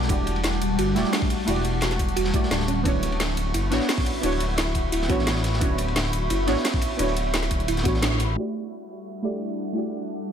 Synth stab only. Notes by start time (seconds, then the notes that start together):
Already playing: A3 E4 F#4 G4 D5
0.07 A3 E4 F#4 G4
0.12 D5
0.95 A3 E4 F#4 G4 D5
1.45 A3 E4 F#4 G4
1.50 D5
2.33 A3 E4 F#4 G4 D5
2.83 B3 D4 E4 F#4
2.88 C#5
3.70 B3 D4 E4 F#4 C#5
4.21 B3 D4 E4 F#4
4.26 C#5
5.08 B3 D4 E4 F#4 C#5
5.59 B3 D4 E4 F#4
5.64 C#5
6.46 B3 D4 E4 F#4 C#5
6.97 B3 D4 E4 F#4
7.02 C#5
7.83 B3 D4 E4 F#4
7.88 C#5
8.35 A3 E4 F#4 G4
8.39 D5
9.22 A3 E4 F#4 G4 D5
9.73 A3 E4 F#4 G4
9.78 D5